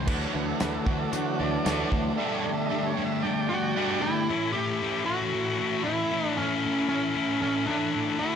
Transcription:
0.06 fingered electric bass D2, distorted electric guitar D3 A3 D4 F#4, tonewheel organ E3 F#3 D4 B4, kick, crash
0.21 tonewheel organ C#5, snare
0.33 fingered electric bass D2, distorted electric guitar D3 A3, tonewheel organ B4
0.48 tonewheel organ A4
0.60 fingered electric bass D2, distorted electric guitar D3 A3 D4 F#4, tonewheel organ B4, snare, closed hi-hat
0.75 tonewheel organ A4
0.85 fingered electric bass D2, distorted electric guitar D3 A3 D4 F#4, tonewheel organ F#4, kick
0.99 tonewheel organ A4
1.12 fingered electric bass D3, distorted electric guitar D3 A3 D4 F#4, tonewheel organ F#4, closed hi-hat
1.39 fingered electric bass D2, distorted electric guitar D3 A3, tonewheel organ D5
1.66 fingered electric bass D2, distorted electric guitar D3 A3 D4 F#4, snare, closed hi-hat
1.91 fingered electric bass D2, distorted electric guitar D3 A3 D4 F#4, kick
2.15 distorted electric guitar G2 D3 G4, tonewheel organ G3 A3 D4 E5
2.19 distorted electric guitar G3 A3 D4
2.35 tonewheel organ C#5
2.44 distorted electric guitar G2 D3 G3 A3
2.54 tonewheel organ E5
2.65 tonewheel organ D#5
2.70 distorted electric guitar G2 D3 G3 A3 D4 G4, tonewheel organ E5
2.86 tonewheel organ C#5
2.97 distorted electric guitar G2 D3 G3 A3 D4 G4
3.05 tonewheel organ E5
3.22 distorted electric guitar G2 D3 G3 A3 D4 G4, tonewheel organ D5 G5
3.49 distorted electric guitar G2 D3 G3 A3, lead electric guitar F#4
3.76 distorted electric guitar G2 D3 G3 A3 D4 G4
4.02 distorted electric guitar G2 D3 G3 A3 D4 G4, lead electric guitar E4
4.30 distorted electric guitar A2 E3 A3 C#4 E4, tonewheel organ A3 E4 A4 C#5
4.53 distorted electric guitar A2 E3 A3 C#4, lead electric guitar G4
4.57 distorted electric guitar E4
4.82 distorted electric guitar A2 E3 A3 C#4 E4
5.06 distorted electric guitar A2 E3 A3 C#4 E4, lead electric guitar F#4
5.33 distorted electric guitar A2 E3 A3 C#4 E4
5.60 distorted electric guitar A2 E3 A3 C#4 E4
5.84 distorted electric guitar A2 E3 A3 C#4 E4, lead electric guitar E4
6.11 distorted electric guitar A2 E3 A3 C#4 E4
6.28 lead electric guitar D4
6.37 distorted electric guitar A2 E3 A3 C#4 E4, lead electric guitar C#4
6.64 distorted electric guitar A2 E3 A3 C#4 E4
6.89 distorted electric guitar A2 E3 A3 C#4 E4, lead electric guitar C#4
7.15 distorted electric guitar A2 E3 A3 C#4 E4
7.42 distorted electric guitar A2 E3 A3 C#4 E4, lead electric guitar C#4
7.67 distorted electric guitar A2 E3 A3 C#4 E4, lead electric guitar D4
7.95 distorted electric guitar A2 E3 A3 C#4 E4
8.19 distorted electric guitar D3 A3 D4 F#4, tonewheel organ A3 D4 F#4 A4, lead electric guitar E4

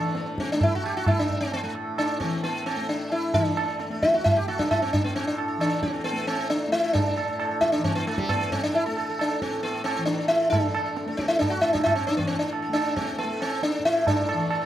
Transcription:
Already playing: tanpura A2 E3 A3, sitar D4 A4
0.15 sitar A4, tabla te
0.26 tabla te
0.38 sitar C4, tabla ke
0.49 sitar D4, tabla te
0.54 tanpura A3
0.61 sitar E4, tabla tin, tabla ge
0.75 sitar F#4
0.84 sitar G4, tabla na
0.97 sitar F#4
1.06 tanpura A3, sitar E4, tabla na, tabla ge
1.19 sitar D4
1.30 tabla ge
1.41 sitar C4
1.52 sitar B3, tabla tin
1.63 tanpura A2, sitar A3
1.75 tabla na
1.98 sitar D4 A4, tabla na
2.20 tanpura E3, sitar C4 A4, tabla ke
2.43 sitar B3, tabla tin
2.66 sitar C4 A4, tabla na
2.77 tanpura A3
2.89 sitar D4 A4, tabla te
3.11 sitar E4 A4, tabla te
3.34 tanpura E3, sitar D4, tabla tin, tabla ge
3.46 sitar A4
3.57 sitar A4, tabla na
3.68 sitar A4
3.80 sitar A4, tabla te
3.90 tanpura A3, sitar A4, tabla te
4.02 sitar E4, tabla ke
4.14 sitar F#4, tabla te
4.24 sitar E4, tabla tin, tabla ge
4.36 sitar G4
4.46 tanpura A3, sitar F#4, tabla na
4.59 sitar D4, tabla ke
4.71 sitar E4, tabla na, tabla ge
4.82 sitar C4
4.93 sitar D4, tabla ge
5.01 tanpura A2, sitar B3
5.16 sitar C4, tabla tin
5.27 sitar D4
5.38 sitar A4, tabla na
5.48 sitar A4
5.57 tanpura E3, sitar D4, tabla na
5.71 sitar A4
5.83 sitar C4, tabla ke
5.94 sitar A4
6.04 sitar B3, tabla tin
6.12 tanpura A3, sitar A4
6.27 sitar C4, tabla na
6.39 sitar A4
6.50 sitar D4, tabla te
6.68 tanpura A3, sitar E4
6.73 tabla te
6.84 sitar A4
6.93 sitar D4, tabla tin, tabla ge
7.06 sitar A4
7.16 sitar A4, tabla na
7.23 tanpura A2
7.28 sitar A4
7.40 sitar A4, tabla na
7.51 sitar A4
7.61 sitar E4, tabla ke
7.72 sitar D4
7.78 tanpura E3
7.84 sitar C4, tabla tin, tabla ge
7.95 sitar B3
8.07 sitar A3, tabla na
8.18 sitar G3, tabla ke
8.29 tanpura A3, sitar B3, tabla na, tabla ge
8.40 sitar A4
8.52 sitar C4, tabla ge
8.63 sitar D4
8.74 sitar E4, tabla tin
8.86 tanpura A3, sitar A4
8.97 sitar A4, tabla na
9.09 sitar A4
9.19 sitar D4, tabla na
9.32 sitar A4
9.41 tanpura A2, sitar C4, tabla ke
9.52 sitar A4
9.63 sitar B3, tabla tin
9.75 sitar A4
9.84 sitar C4, tabla na
9.96 tanpura E3, sitar A4
10.05 sitar D4, tabla te
10.19 sitar A4
10.28 sitar E4, tabla te
10.41 sitar A4
10.50 tanpura A3, sitar D4, tabla tin, tabla ge
10.63 sitar A4
10.74 sitar A4, tabla na
10.86 sitar A4
10.96 sitar A4, tabla te
11.06 tanpura A3, sitar A4, tabla te
11.17 sitar C4, tabla ke
11.28 sitar E4, tabla te
11.39 sitar D4, tabla tin, tabla ge
11.50 sitar F#4
11.60 tanpura A2, sitar E4, tabla na
11.73 sitar D4, tabla ke
11.83 sitar E4, tabla na, tabla ge
11.95 sitar C4
12.07 sitar D4, tabla te
12.16 tanpura E3, sitar B3, tabla ge
12.27 sitar C4, tabla tin
12.39 sitar D4
12.51 sitar A4, tabla na
12.62 sitar A4
12.69 tanpura A3
12.73 sitar D4, tabla na
12.84 sitar A4
12.96 sitar C4, tabla ke
13.07 sitar A4
13.19 sitar B3, tabla tin
13.24 tanpura A3
13.41 sitar C4, tabla na
13.50 sitar A4
13.63 sitar D4, tabla te
13.73 sitar A4
13.79 tanpura A2
13.85 sitar E4, tabla te
13.95 sitar A4
14.07 sitar D4, tabla tin, tabla ge
14.17 sitar A4
14.28 sitar A4, tabla na
14.33 tanpura E3
14.39 sitar A4
14.50 sitar A4, tabla na
14.61 sitar A4

